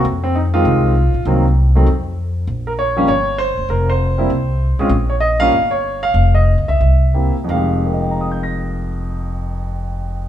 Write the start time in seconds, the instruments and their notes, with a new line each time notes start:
0.05 upright bass F2
0.24 grand piano C4
0.35 grand piano D#4
0.54 grand piano D#3 G#3 C4 F4 G4
0.65 upright bass C2
1.14 upright bass A#1
1.25 upright bass C2, grand piano D#3 F#3 A#3 C4
1.75 grand piano D#3 F#3 A3 C4
1.86 upright bass F2
2.47 upright bass A#1
2.67 grand piano A#4
2.79 grand piano C#5
2.97 grand piano F3 G3 A#3 C#4
3.08 upright bass G1, grand piano C#5
3.38 grand piano C5
3.57 upright bass F#1
3.69 upright bass F1, grand piano A#4
3.90 grand piano C5
4.18 grand piano G3 A#3 C4 E4
4.30 upright bass C2
4.79 upright bass B1, grand piano G#3 C4 C#4 F4
4.89 upright bass A#1
5.09 grand piano C#5
5.20 grand piano D#5
5.40 grand piano G3 A#3 C#4 F4 F5
5.52 upright bass G1
5.71 grand piano C#5
6.03 grand piano F5
6.14 upright bass F1
6.34 grand piano D#5
6.58 upright bass C2
6.68 upright bass C#2, grand piano E5
6.80 upright bass C2
7.14 grand piano A#3 C4 E4 G4
7.36 muted upright bass stroke
7.44 grand piano F2 D#3
7.49 upright bass F1, grand piano G#3 F5
7.56 grand piano G4
7.86 grand piano A#4
7.94 grand piano D#5
8.02 grand piano G5
8.11 grand piano A#5
8.21 grand piano D#6
8.32 grand piano G6
8.43 grand piano A#6